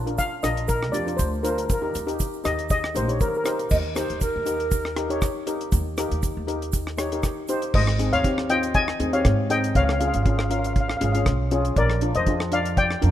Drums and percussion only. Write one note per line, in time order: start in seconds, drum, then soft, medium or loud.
0.07 closed hi-hat medium
0.18 kick medium
0.18 closed hi-hat medium
0.18 shaker medium
0.43 cross-stick medium
0.43 closed hi-hat medium
0.43 shaker medium
0.57 closed hi-hat medium
0.68 kick loud
0.68 closed hi-hat medium
0.68 shaker loud
0.83 cross-stick medium
0.94 closed hi-hat medium
0.94 shaker medium
1.07 closed hi-hat medium
1.07 shaker soft
1.19 kick medium
1.19 closed hi-hat medium
1.19 shaker medium
1.33 shaker soft
1.45 closed hi-hat medium
1.45 shaker medium
1.58 closed hi-hat medium
1.58 shaker soft
1.70 kick loud
1.70 closed hi-hat medium
1.70 shaker medium
1.95 closed hi-hat medium
1.95 shaker medium
2.08 closed hi-hat medium
2.08 shaker soft
2.20 kick medium
2.20 closed hi-hat medium
2.20 shaker medium
2.33 shaker soft
2.45 cross-stick medium
2.45 closed hi-hat medium
2.45 shaker medium
2.59 closed hi-hat medium
2.70 kick loud
2.70 closed hi-hat medium
2.70 shaker loud
2.84 cross-stick medium
2.84 shaker soft
2.96 closed hi-hat medium
2.96 shaker medium
3.09 closed hi-hat medium
3.09 shaker soft
3.20 kick medium
3.20 closed hi-hat medium
3.20 shaker medium
3.34 shaker soft
3.45 cross-stick medium
3.45 closed hi-hat medium
3.45 shaker medium
3.59 closed hi-hat medium
3.59 shaker soft
3.70 kick loud
3.70 crash medium
3.70 shaker medium
3.96 cross-stick medium
3.96 closed hi-hat medium
3.96 shaker medium
4.10 closed hi-hat medium
4.21 kick medium
4.21 closed hi-hat medium
4.21 shaker medium
4.46 closed hi-hat medium
4.46 shaker medium
4.60 closed hi-hat medium
4.71 kick loud
4.71 closed hi-hat medium
4.71 shaker medium
4.85 cross-stick medium
4.96 cross-stick medium
4.96 closed hi-hat medium
5.10 closed hi-hat medium
5.22 kick medium
5.22 cross-stick medium
5.22 closed hi-hat medium
5.22 shaker medium
5.47 closed hi-hat medium
5.47 shaker medium
5.61 closed hi-hat medium
5.72 kick loud
5.72 closed hi-hat medium
5.72 shaker medium
5.97 cross-stick medium
5.97 closed hi-hat medium
5.97 shaker medium
6.11 closed hi-hat medium
6.23 kick medium
6.23 closed hi-hat medium
6.23 shaker medium
6.48 closed hi-hat medium
6.62 closed hi-hat medium
6.73 kick medium
6.73 closed hi-hat medium
6.73 shaker medium
6.87 cross-stick medium
6.98 cross-stick medium
6.98 closed hi-hat medium
6.98 shaker medium
7.12 closed hi-hat medium
7.23 kick medium
7.23 cross-stick medium
7.23 closed hi-hat medium
7.23 shaker medium
7.48 closed hi-hat medium
7.48 shaker medium
7.62 closed hi-hat medium
7.74 kick loud
7.74 crash loud
7.87 cross-stick medium
7.99 closed hi-hat medium
8.13 closed hi-hat medium
8.24 kick medium
8.24 closed hi-hat medium
8.38 cross-stick medium
8.50 closed hi-hat medium
8.63 closed hi-hat medium
8.74 kick loud
8.74 closed hi-hat medium
8.88 cross-stick medium
9.00 closed hi-hat medium
9.13 closed hi-hat medium
9.25 kick medium
9.25 cross-stick loud
9.25 closed hi-hat medium
9.50 closed hi-hat medium
9.64 closed hi-hat medium
9.75 kick loud
9.75 closed hi-hat medium
9.89 cross-stick medium
10.01 closed hi-hat medium
10.14 closed hi-hat medium
10.26 kick medium
10.26 closed hi-hat medium
10.39 cross-stick medium
10.51 closed hi-hat medium
10.64 closed hi-hat medium
10.76 kick loud
10.76 closed hi-hat medium
10.89 cross-stick medium
11.01 closed hi-hat medium
11.15 closed hi-hat medium
11.26 kick medium
11.26 cross-stick medium
11.26 closed hi-hat medium
11.51 closed hi-hat medium
11.65 closed hi-hat medium
11.76 kick loud
11.76 closed hi-hat medium
11.90 cross-stick medium
12.01 closed hi-hat medium
12.15 closed hi-hat medium
12.26 kick medium
12.26 closed hi-hat medium
12.40 cross-stick medium
12.52 closed hi-hat medium
12.66 closed hi-hat medium
12.77 kick loud
12.77 closed hi-hat medium
12.90 cross-stick medium
13.02 closed hi-hat medium